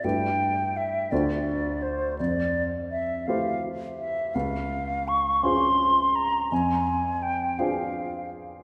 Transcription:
0.04 1.08 G2 soft
0.04 1.08 A3 soft
0.04 1.08 E4 soft
0.04 1.08 G4 soft
0.04 1.08 B4 soft
0.04 0.78 G5 medium
0.77 1.13 E5 soft
1.12 2.16 D2 soft
1.12 2.15 A3 soft
1.12 2.15 D4 soft
1.12 2.16 F4 soft
1.12 2.16 C5 soft
1.12 1.84 D5 soft
1.82 2.18 C5 soft
2.19 3.24 F2 soft
2.19 2.63 D5 medium
2.91 3.28 E5 medium
3.27 4.31 A3 soft
3.27 4.31 E4 soft
3.27 4.31 G4 soft
3.27 4.32 C5 soft
3.27 3.63 F5 soft
3.99 4.36 E5 soft
4.35 5.40 C#2 soft
4.35 5.10 F5 medium
5.08 5.45 C#6 medium
5.43 6.47 C#4 soft
5.43 6.48 F4 soft
5.43 6.48 G#4 soft
5.43 6.48 C5 soft
5.43 6.17 C6 medium
6.16 6.51 A#5 medium
6.52 7.55 F2 soft
6.52 7.24 G#5 medium
7.23 7.60 G5 medium
7.59 8.63 D4 soft
7.59 8.63 F4 soft
7.59 8.63 G#4 soft
7.59 8.63 C5 soft
7.59 8.32 F5 soft

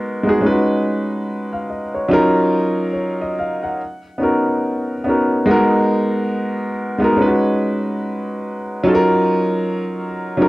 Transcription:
0.00 0.23 G#3 loud
0.00 0.25 B3 loud
0.00 0.26 D#4 loud
0.00 0.27 F#4 loud
0.00 0.43 A#4 loud
0.23 0.40 G#3 medium
0.23 0.41 B3 medium
0.23 0.42 D#4 medium
0.27 0.42 F#4 medium
0.27 0.43 G#4 loud
0.41 1.79 G#3 medium
0.41 1.79 C#4 medium
0.41 1.80 D#4 medium
0.41 0.51 F4 medium
0.46 1.81 B4 loud
0.52 1.84 F#4 medium
1.53 1.68 F5 medium
1.70 1.94 D#5 medium
1.94 2.34 C#5 medium
2.08 3.30 F#3 loud
2.08 3.31 C#4 medium
2.08 3.31 D#4 loud
2.12 3.32 F4 loud
2.12 3.32 A#4 loud
2.93 3.19 C#5 medium
3.21 3.36 D#5 medium
3.39 3.63 F5 medium
3.63 4.03 F#5 medium
4.18 4.91 B3 medium
4.18 4.92 C#4 medium
4.18 4.92 D#4 medium
4.18 4.93 F#4 medium
4.23 4.94 A#4 medium
5.04 5.41 B3 medium
5.04 5.42 C#4 medium
5.04 5.42 D#4 medium
5.08 5.43 F#4 medium
5.08 5.44 A#4 medium
5.46 6.68 G#3 loud
5.46 6.68 B3 medium
5.46 6.69 D#4 loud
5.46 6.70 F#4 loud
5.51 6.70 A#4 loud
6.98 7.15 G#3 medium
6.98 7.17 B3 loud
6.98 7.17 D#4 medium
6.98 7.18 F#4 medium
7.04 7.19 A#4 loud
7.17 8.55 G#3 medium
7.17 8.55 C#4 medium
7.17 8.56 D#4 medium
7.21 7.27 F4 medium
7.21 8.57 B4 loud
7.27 8.60 F#4 medium
8.84 10.05 F#3 loud
8.84 10.06 C#4 medium
8.84 10.07 D#4 medium
8.84 10.07 F4 medium
8.88 8.95 A4 loud
8.95 10.11 A#4 loud
10.37 10.48 F#3 loud
10.37 10.48 C#4 medium
10.37 10.48 D#4 medium
10.37 10.48 F4 medium
10.42 10.48 A#4 loud

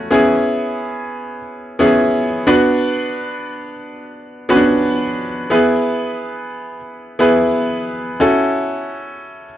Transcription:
0.00 0.13 A3 medium
0.00 0.11 C#4 medium
0.00 0.11 E4 medium
0.00 0.14 F#4 medium
0.11 1.36 B3 medium
0.11 1.36 C#4 medium
0.11 1.37 E4 medium
0.11 1.37 G#4 medium
1.79 2.45 B3 medium
1.79 2.47 C#4 medium
1.79 2.47 E4 medium
1.79 2.48 G#4 medium
2.47 3.72 B3 medium
2.47 3.72 D4 medium
2.47 3.73 F#4 medium
2.47 3.73 B4 medium
4.49 5.43 B3 medium
4.49 4.56 C#4 medium
4.49 5.44 F#4 medium
4.49 5.44 B4 medium
4.56 5.47 D4 medium
5.50 6.76 B3 medium
5.50 6.76 E4 medium
5.50 6.76 G#4 medium
5.50 6.76 B4 medium
7.19 8.13 B3 medium
7.19 8.13 E4 medium
7.19 8.14 G#4 medium
7.19 8.14 B4 medium
8.20 9.45 C#4 medium
8.20 9.46 E4 medium
8.20 9.46 F#4 medium
8.20 9.46 A4 medium

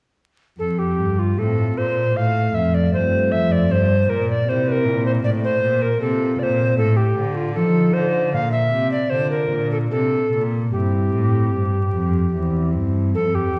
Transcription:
0.58 1.00 F2 soft
0.58 0.94 F2 soft
0.58 0.80 A4 medium
0.79 1.20 G4 medium
0.98 1.34 G2 soft
0.98 1.37 G2 soft
1.19 1.40 F4 medium
1.37 1.72 A2 soft
1.37 1.75 A2 soft
1.37 1.72 A3 soft
1.37 1.72 C4 soft
1.37 2.11 F4 soft
1.37 1.79 A4 medium
1.76 2.11 A#2 soft
1.76 2.14 A#2 soft
1.76 2.18 C5 medium
2.14 2.50 A2 soft
2.14 2.53 A2 soft
2.14 2.91 A3 soft
2.14 2.56 F5 medium
2.54 2.89 F2 soft
2.54 2.92 F2 soft
2.54 2.76 E5 medium
2.74 2.93 D5 medium
2.92 3.32 G2 soft
2.92 3.27 G2 soft
2.92 3.66 A3 soft
2.92 3.66 C4 soft
2.92 3.66 F4 soft
2.92 3.33 C5 medium
3.31 3.68 F2 soft
3.31 3.66 F2 soft
3.31 3.53 E5 medium
3.52 3.73 D5 medium
3.69 4.07 G2 soft
3.69 4.05 G2 soft
3.69 4.11 C5 medium
4.08 4.43 A#2 soft
4.08 4.46 A#2 medium
4.08 4.28 A#4 medium
4.30 4.50 D5 medium
4.46 4.86 C3 medium
4.46 4.81 C3 soft
4.46 5.20 C4 soft
4.46 5.20 E4 soft
4.46 4.69 C5 medium
4.68 5.05 A#4 medium
4.68 4.73 B4 medium
4.84 5.23 A#2 soft
4.84 5.20 A#2 soft
5.06 5.12 C5 medium
5.23 5.61 A2 medium
5.23 5.58 A2 soft
5.23 5.30 D5 medium
5.44 5.83 C5 medium
5.62 6.00 A#2 medium
5.62 5.97 A#2 soft
5.82 6.00 A#4 medium
6.01 6.35 C3 soft
6.01 6.38 C3 medium
6.01 6.74 C4 soft
6.01 6.74 F4 soft
6.01 6.41 A4 medium
6.39 6.74 A#2 soft
6.39 6.77 A#2 medium
6.39 6.44 D5 medium
6.43 6.77 C5 medium
6.78 7.12 A2 soft
6.78 7.16 A2 medium
6.78 6.98 A4 medium
6.97 7.37 G4 medium
7.17 7.57 D3 medium
7.17 7.52 D3 soft
7.35 7.54 F4 medium
7.54 7.94 F3 soft
7.54 7.90 F3 soft
7.54 8.29 D#4 soft
7.54 8.29 F4 soft
7.54 7.95 A4 medium
7.93 8.29 D3 soft
7.93 8.35 D3 soft
7.93 8.33 C5 medium
8.33 8.72 A#2 medium
8.33 8.68 A#2 soft
8.33 8.51 F5 medium
8.52 8.90 E5 medium
8.72 9.11 C3 soft
8.72 9.08 C3 soft
8.92 9.11 D5 medium
9.10 9.47 D3 soft
9.10 9.50 D3 soft
9.10 9.87 D4 soft
9.10 9.87 F4 soft
9.10 9.30 C5 medium
9.30 9.70 A#4 medium
9.51 9.90 A#2 soft
9.51 9.87 A#2 soft
9.72 9.78 A4 soft
9.91 10.31 C3 soft
9.91 10.28 C3 soft
9.91 10.43 A4 medium
10.32 10.68 A#2 soft
10.32 10.71 A#2 soft
10.72 11.11 G2 soft
10.72 11.08 G2 soft
10.72 11.49 C4 soft
10.72 11.49 E4 soft
10.72 12.70 G4 soft
11.12 11.48 A2 soft
11.12 11.52 A2 soft
11.53 11.92 G2 soft
11.53 11.89 G2 soft
11.93 12.32 F2 soft
11.93 12.29 F2 soft
12.33 12.75 E2 soft
12.33 12.70 E2 soft
12.33 13.10 C4 soft
12.33 13.10 E4 soft
12.74 13.16 G2 soft
12.74 13.10 G2 soft
13.14 13.54 F2 soft
13.14 13.50 F2 soft
13.14 13.36 A4 medium
13.35 13.59 G4 medium
13.54 13.59 E2 soft

